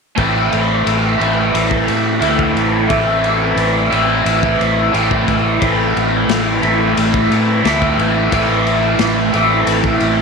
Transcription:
0.16 0.49 A1 medium
0.16 1.22 A2 medium
0.16 1.21 E3 medium
0.16 1.20 A3 medium
0.16 1.18 C4 medium
0.16 kick medium
0.16 ride medium
0.20 1.18 E4 medium
0.53 0.84 A1 medium
0.53 ride medium
0.86 1.17 A1 medium
0.86 ride medium
1.18 1.51 A1 medium
1.18 2.21 E3 medium
1.18 2.21 A3 medium
1.18 2.23 C4 medium
1.18 2.23 E4 medium
1.18 ride soft
1.22 2.20 A2 medium
1.54 1.85 A1 medium
1.54 ride medium
1.71 kick medium
1.88 2.20 A2 medium
1.88 ride medium
2.20 2.53 D2 medium
2.20 2.87 A2 medium
2.20 2.88 E3 medium
2.20 2.89 A3 medium
2.20 2.90 C4 medium
2.20 2.90 E4 medium
2.20 ride medium
2.39 kick medium
2.55 2.87 A1 medium
2.55 ride soft
2.88 3.54 A1 medium
2.88 3.93 A2 medium
2.88 3.91 E3 medium
2.88 3.92 A3 medium
2.88 3.90 C4 medium
2.88 3.90 E4 medium
2.88 kick medium
2.88 ride medium
3.24 ride soft
3.56 3.88 A1 medium
3.56 ride medium
3.90 4.23 A1 medium
3.90 4.92 A2 medium
3.90 4.92 E3 medium
3.90 4.93 A3 medium
3.90 4.94 C4 medium
3.90 4.95 E4 medium
3.90 ride soft
4.25 4.57 A1 medium
4.25 ride medium
4.43 kick medium
4.60 4.91 A1 medium
4.60 ride medium
4.92 5.25 A1 medium
4.92 5.60 A2 medium
4.92 5.60 E3 medium
4.92 5.62 A3 medium
4.92 5.62 C4 medium
4.92 5.63 E4 medium
4.92 ride medium
5.11 kick medium
5.28 5.59 A1 medium
5.28 kick medium
5.28 ride soft
5.61 5.93 A1 medium
5.61 6.66 A2 medium
5.61 6.65 E3 medium
5.61 6.64 A3 medium
5.61 6.63 C4 medium
5.61 6.62 E4 medium
5.61 kick medium
5.61 ride medium
5.96 6.27 A1 medium
5.96 ride soft
6.28 6.60 A1 medium
6.28 snare medium
6.28 ride medium
6.62 6.94 A1 medium
6.62 7.63 A2 medium
6.62 7.63 E3 medium
6.62 7.64 A3 medium
6.62 7.66 C4 medium
6.62 7.66 E4 medium
6.62 ride medium
6.97 7.28 A1 medium
6.97 ride medium
7.14 kick medium
7.30 7.61 A2 medium
7.30 ride medium
7.63 7.95 D2 medium
7.63 8.29 A2 medium
7.63 8.29 E3 medium
7.63 8.30 A3 medium
7.63 8.30 C4 medium
7.63 8.31 E4 medium
7.63 snare medium
7.63 ride medium
7.82 kick medium
7.97 8.29 A1 medium
7.97 ride medium
8.31 8.96 A1 medium
8.31 9.31 A2 medium
8.31 9.31 E3 medium
8.31 9.32 A3 medium
8.31 9.32 C4 medium
8.31 9.31 E4 medium
8.31 kick medium
8.31 ride medium
8.67 ride soft
8.99 9.30 A1 medium
8.99 snare loud
8.99 ride medium
9.32 9.65 A1 medium
9.32 10.22 A2 medium
9.32 10.22 E3 medium
9.32 10.22 A3 medium
9.32 10.22 C4 medium
9.32 10.22 E4 medium
9.32 ride medium
9.67 9.98 A1 medium
9.67 ride medium
9.84 kick medium
10.00 10.22 A1 medium
10.00 ride medium

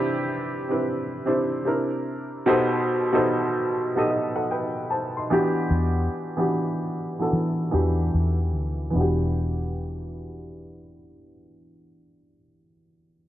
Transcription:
0.00 0.69 C3 loud
0.00 0.69 C4 loud
0.00 0.70 D4 loud
0.00 0.71 E4 loud
0.00 0.63 G4 loud
0.00 0.72 B4 loud
0.69 1.21 C3 medium
0.69 1.21 C4 medium
0.69 1.21 D4 medium
0.69 1.22 E4 medium
0.69 1.22 B4 medium
1.25 1.63 C3 medium
1.25 1.64 C4 medium
1.25 1.65 D4 medium
1.25 1.65 E4 medium
1.25 1.67 C5 medium
1.65 2.42 C3 medium
1.65 2.42 C4 medium
1.65 2.42 D4 medium
1.65 2.43 E4 medium
1.65 2.43 A#4 medium
2.46 3.07 B2 loud
2.46 3.07 B3 loud
2.46 3.07 D#4 loud
2.46 3.08 G4 loud
2.46 3.08 A4 medium
2.46 3.08 C5 loud
3.13 3.86 B2 medium
3.13 3.86 B3 medium
3.13 3.86 D#4 medium
3.13 3.86 G4 medium
3.13 3.87 A4 medium
3.13 3.87 C5 medium
3.95 4.46 B2 medium
3.95 4.46 B3 medium
3.95 4.47 D#4 medium
3.95 4.09 G4 medium
3.95 4.10 A4 medium
3.95 4.08 D#5 medium
4.10 4.35 G4 soft
4.10 4.34 D#5 medium
4.36 4.49 A4 medium
4.36 4.48 F#5 medium
4.51 4.89 B4 medium
4.51 4.88 G5 medium
4.90 5.16 C5 soft
4.90 5.15 A5 medium
5.17 5.55 D#5 soft
5.17 5.55 C6 medium
5.30 6.27 E3 medium
5.30 6.28 B3 medium
5.30 6.28 D4 medium
5.30 6.28 F#4 medium
5.30 6.29 G4 loud
5.71 6.07 E2 loud
6.37 7.10 E3 medium
6.37 7.10 B3 medium
6.37 7.11 D4 medium
6.37 7.11 F#4 medium
6.37 7.11 G4 medium
7.19 7.70 E3 medium
7.19 7.70 B3 medium
7.19 7.71 D4 soft
7.19 7.71 F#4 medium
7.19 7.71 A4 medium
7.33 7.70 E3 medium
7.71 8.10 E2 medium
7.71 8.87 E3 medium
7.71 8.88 B3 medium
7.71 8.88 D4 medium
7.71 8.88 F#4 medium
7.71 8.89 G4 medium
8.14 8.54 E2 medium
8.54 8.91 D2 medium
8.90 12.34 E3 medium
8.90 12.37 B3 medium
8.95 12.39 E1 medium
8.95 12.39 D4 medium
8.95 12.42 F#4 medium
9.01 12.45 G4 medium

